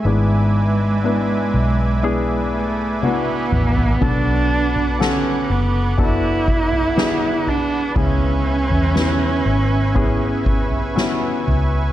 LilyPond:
<<
  \new Staff \with { instrumentName = "Accordion" } { \time 4/4 \key e \mixolydian \tempo 4 = 60 << { <e'' gis'' d'''>1 | <fis'' d'''>1 | <e'' gis'' cis'''>1 | } \\ { b'1~ | b'1~ | b'1 | } >> }
  \new Staff \with { instrumentName = "Grand piano" } { \time 4/4 \key e \mixolydian <b d' e' gis'>4 <b d' e' b'>4 <b d' e' gis'>4 <b d' e' fis'>4 | <b d' fis' a'>4 <d b fis' a'>4 <b d' fis' a'>4 <b d' fis' gis'>4 | <b cis' e' gis'>4 <b cis' e' b'>4 <b cis' e' gis'>4 <b cis' e' fis'>4 | }
  \new Staff \with { instrumentName = "Grand piano" } { \clef bass \time 4/4 \key e \mixolydian <gis, gis>4. r2 r8 | <b, fis>4. r2 r8 | <cis gis>4. r2 r8 | }
  \new Staff \with { instrumentName = "Cello" } { \time 4/4 \key e \mixolydian gis2~ gis8 a8 b4 | d'4 cis'8 b8 e'4. d'8 | cis'2.~ cis'8 r8 | }
  \new Staff \with { instrumentName = "Fingered electric bass" } { \clef bass \time 4/4 \key e \mixolydian gis,,4. b,,2 a,,8 | r4. fis,,2~ fis,,8 | cis,8. e,8. gis,,2 cis,8 | }
  \new DrumStaff \with { instrumentName = "Drums" } \drummode { \time 4/4 r4 r4 r4 tommh8 toml16 tomfh16 | <bd tomfh>8. tomfh16 sn4 <bd tomfh>8 bd16 tomfh16 sn8 tomfh8 | <bd tomfh>8. tomfh16 sn4 <bd tomfh>8 bd16 tomfh16 sn8 tomfh8 | }
>>